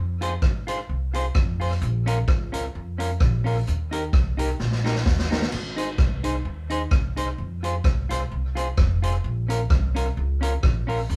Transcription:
Already playing: upright bass F2
0.21 clean electric guitar F4 G#4 C5, closed hi-hat
0.42 upright bass G#2, kick, cross-stick
0.67 clean electric guitar F4 G#4 C5, closed hi-hat
0.89 upright bass C2
1.14 clean electric guitar F4 G#4 C5, closed hi-hat
1.35 upright bass F2, kick, cross-stick
1.60 clean electric guitar F4 G#4 C5, open hi-hat
1.71 cross-stick
1.81 upright bass A#1, hi-hat pedal
2.06 clean electric guitar C#4 F4 A#4, closed hi-hat
2.28 upright bass C#2, kick, cross-stick
2.52 clean electric guitar C#4 F4 A#4, closed hi-hat
2.75 upright bass F2
2.98 clean electric guitar C#4 F4 A#4, closed hi-hat
3.20 upright bass A#1, kick, cross-stick
3.44 clean electric guitar C#4 F4 A#4, open hi-hat
3.66 upright bass D#2, hi-hat pedal
3.91 clean electric guitar D#4 G4 A#4, closed hi-hat
4.13 upright bass C2, kick, cross-stick
4.37 clean electric guitar D#4 G4 A#4, closed hi-hat
4.59 upright bass A#1, snare
4.72 snare
4.84 clean electric guitar D#4 G4 A#4, snare
4.96 snare
5.06 upright bass D#2, kick, snare
5.19 snare
5.30 clean electric guitar D#4 G4 A#4, snare
5.42 snare
5.52 upright bass G#1, crash
5.76 clean electric guitar D#4 G#4 C5, closed hi-hat
5.98 upright bass C2, kick, cross-stick
6.23 clean electric guitar D#4 G#4 C5, closed hi-hat
6.45 upright bass D#2
6.70 clean electric guitar D#4 G#4 C5, closed hi-hat
6.91 upright bass C2, kick, cross-stick
7.16 clean electric guitar D#4 G#4 C5, closed hi-hat
7.38 upright bass F2
7.63 clean electric guitar F4 G#4 C5, closed hi-hat
7.84 upright bass C2, kick, cross-stick
8.09 clean electric guitar F4 G#4 C5, cross-stick, closed hi-hat
8.32 upright bass C2
8.55 clean electric guitar F4 G#4 C5, closed hi-hat
8.77 upright bass F1, kick, cross-stick
9.02 clean electric guitar F4 G#4 C5, closed hi-hat
9.24 upright bass A#1
9.48 clean electric guitar C#4 F4 A#4, closed hi-hat
9.70 upright bass C2, kick, cross-stick
9.95 clean electric guitar C#4 F4 A#4, closed hi-hat
10.17 upright bass C#2
10.41 clean electric guitar C#4 F4 A#4, closed hi-hat
10.63 upright bass A#1, kick, cross-stick
10.87 clean electric guitar C#4 F4 A#4, open hi-hat
11.10 upright bass D#2, hi-hat pedal

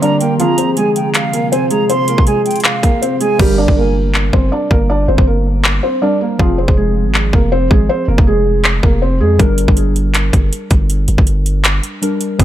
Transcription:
Already playing: ambient pad D3 A#3 G4, downlifter
0.02 synth keys G3 D4 A#4, felt piano D4 D5, flute A#5, closed hi-hat
0.20 felt piano A#3 A#4, flute G5, closed hi-hat
0.38 ambient pad C3 G#3 F4, synth keys F3 C4 G#4, felt piano F3 F4, flute A#5, closed hi-hat
0.58 felt piano C4 C5, closed hi-hat
0.76 felt piano G#3 G#4, flute G#5, closed hi-hat
0.96 flute G5, closed hi-hat
1.14 flute F5, clap, closed hi-hat
1.33 felt piano A#3 A#4, closed hi-hat
1.52 felt piano C4 C5, flute G#5, closed hi-hat
1.71 felt piano G#3 G#4, flute A#5, closed hi-hat
1.89 felt piano C4 C5, flute C6, closed hi-hat
2.08 felt piano A#3 A#4, closed hi-hat
2.18 kick
2.27 felt piano G#3 G#4, flute G#5, closed hi-hat
2.45 flute G5, closed hi-hat
2.51 closed hi-hat
2.56 closed hi-hat
2.60 flute F5, closed hi-hat
2.64 clap, closed hi-hat
2.83 felt piano A#3 A#4, kick, closed hi-hat
3.02 felt piano C4 C5, closed hi-hat
3.20 felt piano G#3 G#4, flute G#5, closed hi-hat
3.38 808-style bass G1, synth keys G3 D4 A#4, felt piano G3 G4, kick, crash
3.58 felt piano D4 D5
3.68 808-style bass G1, kick
3.77 felt piano A#3 A#4
4.14 clap
4.33 808-style bass G1, felt piano C4 C5, kick
4.52 felt piano D4 D5
4.71 808-style bass G1, felt piano A#3 A#4, kick
4.90 felt piano D4 D5
5.08 808-style bass G1, felt piano C4 C5
5.18 808-style bass G1, kick
5.27 felt piano A#3 A#4
5.64 clap
5.83 felt piano C4 C5
6.02 synth keys G3 D4 A#4, felt piano D4 D5
6.21 felt piano A#3 A#4
6.38 808-style bass F1, synth keys F3 C4 G#4, felt piano F3 F4, kick
6.58 felt piano C4 C5
6.68 808-style bass F1, kick
6.77 felt piano G#3 G#4
7.06 808-style bass G#1
7.14 clap
7.33 808-style bass F1, felt piano A#3 A#4, kick
7.52 felt piano C4 C5
7.71 808-style bass G#1, felt piano G#3 G#4, kick
7.89 felt piano C4 C5
8.08 808-style bass F1, felt piano A#3 A#4
8.18 808-style bass F1, kick
8.27 felt piano G#3 G#4
8.64 clap
8.83 808-style bass F1, felt piano A#3 A#4, kick
9.02 felt piano C4 C5
9.21 808-style bass F2, felt piano G#3 G#4
9.38 808-style bass G1, synth keys G3 D4 A#4, kick, closed hi-hat
9.58 closed hi-hat
9.68 808-style bass G1, kick
9.77 closed hi-hat
9.96 closed hi-hat
10.14 clap, closed hi-hat
10.33 808-style bass G1, kick, closed hi-hat
10.53 closed hi-hat
10.71 808-style bass G1, kick, closed hi-hat
10.90 closed hi-hat
11.08 808-style bass G1, closed hi-hat
11.18 808-style bass G1, kick
11.27 closed hi-hat
11.46 closed hi-hat
11.64 clap, closed hi-hat
11.83 closed hi-hat
12.02 synth keys G3 D4 A#4, closed hi-hat
12.21 closed hi-hat
12.38 808-style bass F1, synth keys F3 C4 G#4, kick, closed hi-hat

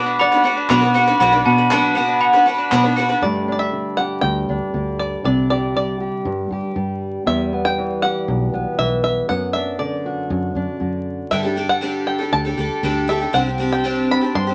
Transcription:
Already playing: fingered electric bass B2, twelve-string acoustic guitar B3 D4 F#4 B4, mandolin B3, glockenspiel D6
0.06 mandolin D4
0.19 mandolin F#4, five-string banjo D5, glockenspiel B5
0.32 twelve-string acoustic guitar B3 D4 F#4 B4, mandolin B4
0.44 twelve-string acoustic guitar B3 D4 F#4 B4, mandolin F#4
0.57 mandolin D4
0.69 twelve-string acoustic guitar B2 F#3 B3 D4 F#4 B4, fingered electric bass B2, mandolin B3, glockenspiel B5, clap
0.82 twelve-string acoustic guitar B3 D4 F#4 B4, mandolin D4
0.94 twelve-string acoustic guitar B3 D4 F#4 B4, mandolin F#4
1.07 twelve-string acoustic guitar B3 D4 F#4 B4, mandolin B4
1.20 fingered electric bass B1, twelve-string acoustic guitar B2 F#3 B3 D4 F#4 B4, mandolin B3, glockenspiel B5
1.32 twelve-string acoustic guitar B3 D4 F#4 B4, mandolin D4
1.45 fingered electric bass B2, mandolin F#4, glockenspiel A5
1.58 mandolin B4
1.71 twelve-string acoustic guitar B2 F#3 B3 D4 F#4 B4, mandolin F#4, glockenspiel A5, clap
1.83 mandolin D4
1.95 twelve-string acoustic guitar B3 D4 F#4 B4, mandolin B3
2.08 mandolin D4
2.21 mandolin F#4, glockenspiel B5
2.33 twelve-string acoustic guitar B3 D4 F#4 B4, mandolin B4
2.46 twelve-string acoustic guitar B3 D4 F#4 B4, mandolin F#4
2.58 mandolin D4
2.71 twelve-string acoustic guitar B2 F#3 B3 D4 F#4 B4, fingered electric bass B2, mandolin B3, glockenspiel B5, clap
2.84 twelve-string acoustic guitar B3 D4 F#4 B4, mandolin D4
2.96 twelve-string acoustic guitar B3 D4 F#4 B4, mandolin F#4
3.09 twelve-string acoustic guitar D4 F#4 B4, mandolin B4
3.13 twelve-string acoustic guitar B3
3.22 steel-string acoustic guitar G2 D3 A3 D4 G4, fingered electric bass G2, five-string banjo D5
3.48 steel-string acoustic guitar D4
3.52 five-string banjo D5
3.59 five-string banjo E5
3.72 steel-string acoustic guitar D3
3.97 steel-string acoustic guitar G4, five-string banjo F#5
4.21 fingered electric bass D2, steel-string acoustic guitar G2, five-string banjo G5
4.49 fingered electric bass D2, steel-string acoustic guitar D4
4.74 fingered electric bass D2, steel-string acoustic guitar D3
4.99 five-string banjo D5
5.24 fingered electric bass C2, steel-string acoustic guitar C3 D4, five-string banjo D5
5.50 steel-string acoustic guitar G4, five-string banjo D5
5.75 steel-string acoustic guitar G3, five-string banjo D5
6.01 steel-string acoustic guitar G4
6.25 fingered electric bass G2, steel-string acoustic guitar G2
6.51 fingered electric bass G2, steel-string acoustic guitar G4
6.76 fingered electric bass G2, steel-string acoustic guitar G3
7.26 fingered electric bass E2, steel-string acoustic guitar E2 G3, five-string banjo E5
7.53 steel-string acoustic guitar B3
7.65 five-string banjo G5
7.78 steel-string acoustic guitar E3
8.02 steel-string acoustic guitar G4, five-string banjo F#5
8.28 fingered electric bass B1, steel-string acoustic guitar B2
8.53 fingered electric bass B1, steel-string acoustic guitar B3
8.78 fingered electric bass B1, steel-string acoustic guitar E3, five-string banjo E5
9.04 five-string banjo E5
9.29 steel-string acoustic guitar F#2 B3, fingered electric bass F#2, five-string banjo F#5
9.53 steel-string acoustic guitar D4, five-string banjo E5
9.79 steel-string acoustic guitar D3, five-string banjo D5
10.06 steel-string acoustic guitar F#4
10.30 steel-string acoustic guitar F#2, fingered electric bass F#2
10.55 fingered electric bass F#2, steel-string acoustic guitar D4
10.80 fingered electric bass F#2, steel-string acoustic guitar D3
11.31 twelve-string acoustic guitar G2 D3 G3 D4 G4 A4, fingered electric bass G2, five-string banjo E5
11.43 twelve-string acoustic guitar G3 D4 G4 A4
11.56 twelve-string acoustic guitar G3 D4 G4 A4
11.69 five-string banjo F#5
11.81 twelve-string acoustic guitar G2 D3 G3 D4 G4 A4
12.07 five-string banjo G5
12.19 twelve-string acoustic guitar G3 D4 G4 A4
12.32 fingered electric bass D2, five-string banjo A5
12.45 twelve-string acoustic guitar G3 D4 G4 A4
12.57 fingered electric bass D2, twelve-string acoustic guitar G3 D4 G4 A4
12.83 fingered electric bass D2, twelve-string acoustic guitar G2 D3 G3 D4 G4 A4
13.08 twelve-string acoustic guitar G3 D4 G4 A4, five-string banjo E5
13.20 twelve-string acoustic guitar G3 D4 G4 A4
13.33 fingered electric bass C2, twelve-string acoustic guitar C3 G3 C4 D4 G4, five-string banjo F#5
13.46 twelve-string acoustic guitar C4 D4 G4
13.58 twelve-string acoustic guitar G3 C4 D4 G4
13.72 five-string banjo G5
13.84 twelve-string acoustic guitar C3 G3 C4 D4 G4
14.11 five-string banjo B5
14.21 twelve-string acoustic guitar C4 D4 G4
14.35 fingered electric bass G2, five-string banjo C6
14.47 twelve-string acoustic guitar C4 D4 G4

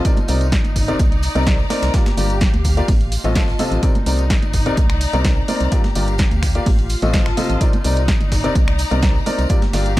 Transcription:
Already playing: string section F4
0.05 grand piano C3 C4 D#4 A#4 D5, string section D#4, kick, closed hi-hat, tambourine
0.17 closed hi-hat, tambourine, high conga
0.28 fm bass C2, grand piano C3 C4 D#4 A#4 D5, closed hi-hat, open hi-hat, tambourine
0.41 closed hi-hat, tambourine
0.47 string section D5
0.52 kick, snare, closed hi-hat, tambourine
0.64 fm bass G1, closed hi-hat, tambourine, high conga
0.74 string section A#5, kick, closed hi-hat, open hi-hat, tambourine
0.88 grand piano C3 C4 D#4 A#4 D5, closed hi-hat, tambourine
0.99 fm bass C2, kick, closed hi-hat, tambourine, high conga
1.12 closed hi-hat, tambourine
1.22 closed hi-hat, open hi-hat, tambourine
1.35 fm bass C2, grand piano C3 C4 D#4 A#4 D5, closed hi-hat, tambourine, high conga
1.47 grand piano D#4 D5, kick, snare, closed hi-hat, tambourine
1.59 tambourine
1.70 grand piano C4 D#4 A#4 D5, snare, closed hi-hat, open hi-hat, tambourine, high conga
1.83 fm bass C2, snare, closed hi-hat, tambourine
1.94 grand piano G2 A#3 F4 G4 D5, string section G4, kick, snare, closed hi-hat, tambourine
2.06 snare, closed hi-hat, tambourine, high conga
2.17 fm bass G1, grand piano G2 A#3 F4 G4 D5, closed hi-hat, open hi-hat, tambourine
2.30 closed hi-hat, tambourine
2.37 string section F5, tambourine
2.41 kick, snare, closed hi-hat
2.54 fm bass D2, closed hi-hat, tambourine, high conga
2.64 kick, closed hi-hat, open hi-hat, tambourine
2.77 grand piano A#3 F4 G4 D5, closed hi-hat, tambourine
2.88 fm bass A1, string section F4, kick, closed hi-hat, open hi-hat, tambourine, high conga
3.01 closed hi-hat, tambourine
3.12 closed hi-hat, open hi-hat, tambourine
3.21 fm bass A1, grand piano A2 C4 F4 A4 D#5, string section D#5, closed hi-hat
3.25 tambourine, high conga
3.31 string section A5
3.35 grand piano A2 C4 F4 A4 D#5, kick, snare, closed hi-hat, tambourine
3.48 snare, tambourine
3.59 grand piano C3 C4 F4 A4 D#5, closed hi-hat, open hi-hat, tambourine, high conga
3.72 fm bass A1, closed hi-hat, tambourine
3.83 grand piano C3 C4 D#4 A#4 D5, string section D#4, kick, closed hi-hat, tambourine
3.95 closed hi-hat, tambourine, high conga
4.06 fm bass C2, grand piano C3 C4 D#4 A#4 D5, closed hi-hat, open hi-hat, tambourine
4.19 string section D5, closed hi-hat, tambourine
4.30 kick, snare, closed hi-hat, tambourine
4.42 fm bass G1, string section A#5, closed hi-hat, tambourine, high conga
4.53 kick, closed hi-hat, open hi-hat, tambourine
4.66 grand piano C3 C4 D#4 A#4 D5, closed hi-hat, tambourine
4.77 fm bass C2, kick, closed hi-hat, tambourine, high conga
4.90 finger snap, closed hi-hat, tambourine
5.01 closed hi-hat, open hi-hat, tambourine
5.13 fm bass C2, grand piano C3 C4 D#4 A#4 D5, closed hi-hat, tambourine, high conga
5.25 grand piano C3 C4 D#4 D5, kick, snare, closed hi-hat, tambourine
5.37 tambourine
5.48 grand piano C4 D#4 A#4 D5, closed hi-hat, open hi-hat, tambourine, high conga
5.60 fm bass C2, closed hi-hat, tambourine
5.72 grand piano G2 A#3 F4 G4 D5, string section G4, kick, closed hi-hat, tambourine
5.84 snare, closed hi-hat, tambourine, high conga
5.95 fm bass G1, grand piano G2 A#3 F4 G4 D5, closed hi-hat, open hi-hat, tambourine
6.08 string section F5, closed hi-hat, tambourine
6.18 kick, snare, closed hi-hat, tambourine
6.31 fm bass D2, closed hi-hat, tambourine, high conga
6.43 finger snap, kick, closed hi-hat, open hi-hat, tambourine
6.55 grand piano A#3 F4 G4 D5, closed hi-hat, tambourine
6.66 fm bass A1, string section F4, kick, closed hi-hat, open hi-hat, tambourine, high conga
6.78 closed hi-hat, tambourine
6.89 closed hi-hat, open hi-hat, tambourine
7.02 fm bass A1, grand piano A2 C4 F4 A4 D#5, string section D#5, closed hi-hat, tambourine, high conga
7.09 string section A5
7.14 grand piano A2 C4 A4 D#5, kick, snare, closed hi-hat, tambourine
7.26 finger snap, snare, tambourine
7.37 grand piano C3 C4 F4 A4 D#5, closed hi-hat, open hi-hat, tambourine, high conga
7.50 fm bass A1, closed hi-hat, tambourine
7.61 grand piano C3 C4 D#4 A#4 D5, string section D#4, kick, closed hi-hat, tambourine
7.73 string section D5, closed hi-hat, tambourine, high conga
7.84 fm bass C2, grand piano C3 C4 D#4 A#4 D5, closed hi-hat, open hi-hat, tambourine
7.92 string section A#5
7.97 closed hi-hat, tambourine
8.08 kick, snare, closed hi-hat, tambourine
8.21 fm bass G1, closed hi-hat, tambourine, high conga
8.32 kick, snare, closed hi-hat, open hi-hat, tambourine
8.44 grand piano C3 C4 D#4 A#4 D5, closed hi-hat, tambourine
8.55 fm bass C2, kick, closed hi-hat, tambourine, high conga
8.68 finger snap, closed hi-hat, tambourine
8.78 closed hi-hat, open hi-hat, tambourine
8.91 fm bass C2, grand piano C3 C4 D#4 A#4 D5, closed hi-hat, tambourine, high conga
9.02 grand piano C3 C4 D#4 A#4 D5, kick, snare, closed hi-hat, tambourine
9.16 tambourine
9.26 grand piano C4 D#4 A#4 D5, closed hi-hat, open hi-hat, tambourine, high conga
9.39 fm bass C2, closed hi-hat, tambourine
9.49 grand piano G2 A#3 F4 G4 D5, string section G4, kick, closed hi-hat, tambourine
9.62 snare, closed hi-hat, tambourine, high conga
9.73 fm bass G1, grand piano G2 A#3 F4 G4 D5, string section F5, snare, closed hi-hat, open hi-hat, tambourine
9.86 closed hi-hat, tambourine

